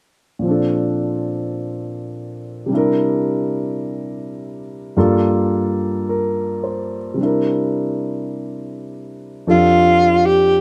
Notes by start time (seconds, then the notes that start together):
0.39 A#2 F3
0.45 C4 D4
0.51 A4
2.66 C3 G3
2.72 D4 E4
2.77 A#4
4.97 G2 G3 A#3 F4 A4
6.09 A#4
6.64 C5
7.14 C3 G3
7.20 D4 E4
7.25 A#4
9.47 F2 F3 D4 F4 G4 A4
10.26 G4